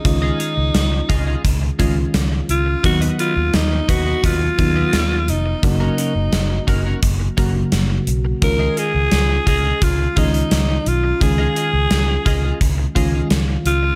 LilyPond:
<<
  \new Staff \with { instrumentName = "Clean electric guitar" } { \time 4/4 \key des \mixolydian \tempo 4 = 86 r16 <f' aes' ees''>16 <f' aes' ees''>16 r8. <f' aes' ees''>16 <f' aes' ees''>16 r8 <f' aes' ees''>16 r4 r16 | r16 <ges' ces'' ees''>16 <ges' ces'' ees''>16 r8. <ges' ces'' ees''>16 <ges' ces'' ees''>16 <ges' ces'' ees''>16 r8 <ges' ces'' ees''>16 r4 | r16 <des' ges' bes'>16 <des' ges' bes'>16 r8. <des' ges' bes'>16 <des' ges' bes'>16 r8 <des' ges' bes'>16 r4 r16 | r16 <f' aes' ees''>16 <f' aes' ees''>16 r8. <f' aes' ees''>16 <f' aes' ees''>16 r8 <f' aes' ees''>16 r4 r16 |
r16 <f' aes' ees''>16 <f' aes' ees''>16 r8. <f' aes' ees''>16 <f' aes' ees''>16 r8 <f' aes' ees''>16 <f' aes' ees''>16 r4 | }
  \new Staff \with { instrumentName = "Alto saxophone" } { \time 4/4 \key des \mixolydian ees'2 r4. f'8 | ges'8 f'8 ees'8 ges'8 f'4. ees'8 | ees'2 r2 | bes'8 aes'4 aes'8 f'8 ees'4 f'8 |
aes'2 r4. f'8 | }
  \new Staff \with { instrumentName = "FM electric piano" } { \time 4/4 \key des \mixolydian <ees aes des' f'>4. r4 <ees aes des' f'>4 r8 | <ees ges ces' ees'>4. r4 <ees ges ces' ees'>4 r8 | <des ges bes ges'>4. r4 <des ges bes ges'>4 r8 | <ees aes des' f'>4. r4 <ees aes des' f'>4 r8 |
<ees aes des' f'>4. r4 <ees aes des' f'>4 r8 | }
  \new Staff \with { instrumentName = "Fingered electric bass" } { \clef bass \time 4/4 \key des \mixolydian des,8 r16 des,16 des,8 des,8 des,8 des,8 des,8 des,8 | ees,8 r16 ees,16 ees,8 ees,8 ees,8 ees,8 ees,8 f,,8 | ges,,8 r16 ges,,16 ges,,8 ges,,8 ges,,8 ges,,8 ges,,8 ces,8 | des,8 r16 des,16 des,8 des,8 des,8 des,8 des,8 ces,8 |
des,8 r16 des,16 des,8 des,8 des,8 des,8 des,8 des,8 | }
  \new DrumStaff \with { instrumentName = "Drums" } \drummode { \time 4/4 <hh bd>8 hh8 <hh sn>8 <hh bd>8 <hh bd>8 <hh bd>8 <hh sn>8 hh8 | <hh bd>16 hh16 hh8 <hh sn>8 <hh bd>8 <hh bd>8 <hh bd>8 <hh sn>8 hh8 | <hh bd>8 hh8 <hh sn>8 <hh bd>8 <hh bd>8 <hh bd>8 <hh sn>8 hh8 | <hh bd>8 hh8 <hh sn>8 <hh bd>8 <hh bd>8 <hh bd>16 hh16 <hh sn>8 hh8 |
<hh bd>8 hh8 <hh sn>8 <hh bd>8 <hh bd>8 <hh bd>8 <hh sn>8 hh8 | }
>>